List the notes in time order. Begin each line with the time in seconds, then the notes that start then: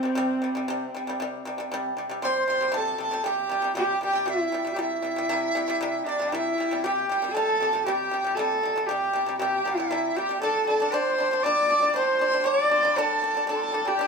Already playing: C4
0.03 C3 G3
0.15 C3 G3
0.42 C3 G3
0.55 C3 G3
0.68 C3 G3
0.95 C3 G3
1.07 C3 G3
1.20 C3 G3
1.45 C3 G3
1.58 C3 G3
1.72 C3 G3
1.97 C3 G3
2.10 C3 G3
2.22 C3 G3 C5 C6
2.47 C3 G3 C6
2.61 C3 G3
2.72 C3 G3 A5
2.77 A4
2.98 C3 G3 A5
3.11 C3 G3
3.24 C3 G3 G4 G5
3.49 C3 G3
3.62 C3 G3
3.75 C3 G3 G4 G5
4.01 C3 G3 G4 G5
4.13 C3 G3
4.26 C3 G3 E4 E5
4.52 C3 G3
4.65 C3 G3
4.73 C3 G4
4.78 G3 E4 E5
5.02 C3 G3
5.16 C3 G3
5.29 C3 G3
5.55 C3 G3
5.68 C3 G3
5.81 C3 G3
6.05 C3 G3 D4 D5
6.19 C3 G3
6.29 C3 G5
6.33 G3 E4 E5
6.58 C3 G3
6.71 C3 G3
6.84 C3 G3 G4 G5
7.09 C3 G3 G5
7.22 C3 G3
7.33 C3 G3 A4 A5
7.61 C3 G3
7.73 C3 G3
7.85 C3 G3 G4 G5
8.11 C3 G3
8.24 C3 G3
8.35 C3 A4 A5
8.39 G3
8.63 C3 G3
8.76 C3 G3
8.86 C3 G4 G5
8.91 G3
9.13 C3 G3
9.26 C3 G3
9.38 C3 G3 G4 G5
9.65 C3 G3
9.76 C3 G3 E4 E5
9.91 C3 G3
10.16 C3 G3 G4 G5
10.29 C3 G3
10.41 G3 D4 A4 A5
10.66 G3 D4 A4 A5
10.80 G3 D4
10.92 G3 D4 C5 C6
11.18 G3 D4
11.31 G3 D4
11.43 G3 D4 D5 D6
11.69 G3 D4
11.80 G3 D4
11.94 G3 D4 C5 C6
12.19 G3 D4 C6
12.32 G3 D4
12.44 G3 D4 D5 D6
12.70 G3 D4 C6
12.83 G3 D4
12.96 G3 D4 A4 A5
13.22 G3 D4
13.34 G3 D4
13.47 G3 D4 A4 A5
13.56 C6
13.62 A5
13.72 G3 D4
13.85 G3 D4 G4 G5
13.99 G3 D4